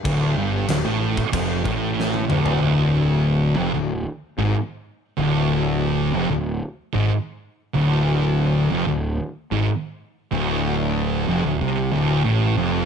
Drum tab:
CC |x---x---x-------|----------------|----------------|----------------|
SD |----o-------o---|----------------|----------------|----------------|
T1 |-------------o--|----------------|----------------|----------------|
T2 |--------------o-|----------------|----------------|----------------|
FT |---------------o|----------------|----------------|----------------|
BD |o------oo-o-----|----------------|----------------|----------------|

CC |----------------|
SD |----------------|
T1 |----------------|
T2 |----------------|
FT |----------------|
BD |----------------|